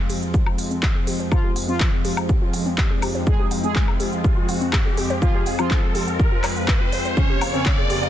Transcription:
0.00 8.09 F2 medium
0.00 7.13 F3 medium
0.00 7.13 G#3 medium
0.00 8.09 C4 medium
0.00 riser medium
0.09 0.13 G4 loud
0.09 open hi-hat loud
0.09 shaker medium
0.22 0.28 F5 medium
0.22 shaker medium
0.34 0.40 G4 medium
0.34 kick loud
0.34 shaker medium
0.46 0.52 F4 loud
0.46 low woodblock soft
0.58 0.65 F5 loud
0.58 open hi-hat loud
0.58 shaker medium
0.71 0.77 C4 loud
0.71 shaker medium
0.83 0.89 G4 medium
0.83 kick loud
0.83 clap loud
0.83 shaker medium
0.95 0.99 G#4 loud
1.07 1.11 G4 loud
1.07 open hi-hat loud
1.07 shaker medium
1.20 1.26 C5 loud
1.20 shaker medium
1.31 1.51 F3 medium
1.31 1.35 F4 medium
1.31 1.51 F4 loud
1.31 kick loud
1.31 low woodblock soft
1.31 shaker medium
1.44 1.50 G4 loud
1.56 1.62 F5 loud
1.56 open hi-hat loud
1.56 shaker medium
1.68 1.88 F3 medium
1.68 1.74 C4 loud
1.68 1.88 F4 medium
1.68 shaker medium
1.80 kick loud
1.80 clap loud
1.80 shaker medium
1.93 2.02 G#4 medium
2.05 2.09 G4 loud
2.05 open hi-hat loud
2.05 shaker medium
2.17 2.23 F5 medium
2.17 low woodblock soft
2.17 shaker medium
2.29 2.35 G4 medium
2.29 kick loud
2.29 shaker medium
2.42 2.48 F4 loud
2.54 2.60 F5 loud
2.54 open hi-hat loud
2.54 shaker medium
2.66 2.72 C4 loud
2.66 shaker medium
2.78 2.84 G4 medium
2.78 kick loud
2.78 clap loud
2.78 shaker medium
2.90 2.94 G#4 loud
3.02 3.06 G4 loud
3.02 open hi-hat loud
3.02 low woodblock soft
3.02 shaker medium
3.15 3.21 C5 loud
3.15 shaker medium
3.27 3.47 G#3 medium
3.27 3.31 F4 medium
3.27 3.47 G#4 loud
3.27 kick loud
3.27 shaker medium
3.39 3.45 G4 loud
3.51 3.58 F5 loud
3.51 open hi-hat loud
3.51 shaker medium
3.64 3.83 G#3 medium
3.64 3.70 C4 loud
3.64 3.83 G#4 loud
3.64 shaker medium
3.76 3.82 F5 medium
3.76 kick loud
3.76 clap loud
3.76 shaker medium
3.88 3.97 G#4 medium
3.88 low woodblock soft
4.00 4.04 G4 loud
4.00 open hi-hat loud
4.00 shaker medium
4.12 4.18 F5 medium
4.12 shaker medium
4.24 4.31 G4 medium
4.24 kick loud
4.24 shaker medium
4.37 4.43 F4 loud
4.49 4.55 F5 loud
4.49 open hi-hat loud
4.49 shaker medium
4.61 4.67 C4 loud
4.61 shaker medium
4.73 4.79 G4 medium
4.73 kick loud
4.73 clap loud
4.73 low woodblock soft
4.73 shaker medium
4.86 4.89 G#4 loud
4.97 5.01 G4 loud
4.97 open hi-hat loud
4.97 shaker medium
5.10 5.16 C5 loud
5.10 shaker medium
5.22 5.42 F3 medium
5.22 5.26 F4 medium
5.22 5.42 F4 loud
5.22 kick loud
5.22 shaker medium
5.34 5.40 G4 loud
5.46 5.53 F5 loud
5.46 open hi-hat loud
5.46 shaker medium
5.59 5.78 F3 medium
5.59 5.65 C4 loud
5.59 5.78 F4 loud
5.59 low woodblock medium
5.59 shaker medium
5.71 5.77 F5 medium
5.71 kick loud
5.71 clap loud
5.71 shaker soft
5.83 5.92 G#4 medium
5.95 5.99 G4 loud
5.95 open hi-hat loud
5.95 shaker medium
6.07 6.14 F5 medium
6.07 shaker medium
6.19 6.26 G4 medium
6.19 kick loud
6.19 shaker medium
6.32 6.38 F4 loud
6.44 6.50 C5 loud
6.44 clap medium
6.44 open hi-hat loud
6.44 low woodblock medium
6.44 shaker medium
6.56 6.62 F5 medium
6.56 shaker medium
6.68 kick loud
6.68 clap loud
6.68 shaker medium
6.81 6.84 F4 medium
6.92 6.96 C5 medium
6.92 open hi-hat loud
6.92 shaker medium
7.05 7.11 C5 medium
7.05 shaker medium
7.17 8.09 C#3 medium
7.17 7.37 C#3 medium
7.17 8.09 A#3 medium
7.17 7.37 C#4 loud
7.17 7.21 F4 medium
7.17 kick loud
7.17 shaker medium
7.29 7.36 G4 loud
7.41 7.48 F5 loud
7.41 open hi-hat loud
7.41 low woodblock medium
7.41 shaker medium
7.54 7.73 C#3 medium
7.54 7.60 C4 loud
7.54 7.73 C#4 loud
7.54 shaker medium
7.66 7.72 F5 medium
7.66 kick loud
7.66 clap loud
7.66 shaker medium
7.78 7.87 G#4 medium
7.90 7.94 G4 loud
7.90 open hi-hat loud
7.90 shaker medium
8.03 8.09 F5 medium
8.03 shaker medium

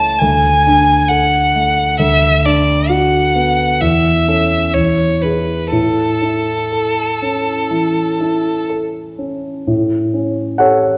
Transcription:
0.00 0.18 C#2 soft
0.00 0.22 A3 soft
0.00 0.24 E4 soft
0.00 0.24 C#5 soft
0.00 0.21 A5 medium
0.19 1.96 D2 soft
0.19 1.10 G#5 medium
0.67 1.38 D4 soft
1.08 1.82 A4 soft
1.08 1.99 F#5 medium
1.55 2.00 A3 soft
1.99 3.77 D2 soft
1.99 2.47 E5 medium
2.45 3.17 D4 soft
2.45 2.91 D5 soft
2.90 3.62 F#4 soft
2.90 3.82 F#5 soft
3.35 3.81 B3 soft
3.81 4.71 E2 soft
3.81 4.76 E5 medium
4.28 4.71 C#4 soft
4.28 4.71 A4 soft
4.74 5.69 E2 soft
4.74 5.24 C#5 soft
5.22 5.68 E4 soft
5.22 5.69 G#4 soft
5.22 5.71 B4 soft
5.72 7.67 A2 soft
5.72 8.66 A4 soft
6.22 7.01 E4 soft
6.72 7.51 A4 soft
7.22 8.01 C#4 soft
7.70 8.50 E3 soft
8.21 9.00 E4 soft
8.70 9.49 A4 soft
9.19 9.67 C#4 soft
9.67 10.98 A2 soft
10.14 10.88 C#4 soft
10.58 10.98 G4 soft
10.58 10.98 A4 soft
10.58 10.98 C#5 soft
10.58 10.98 F#5 medium

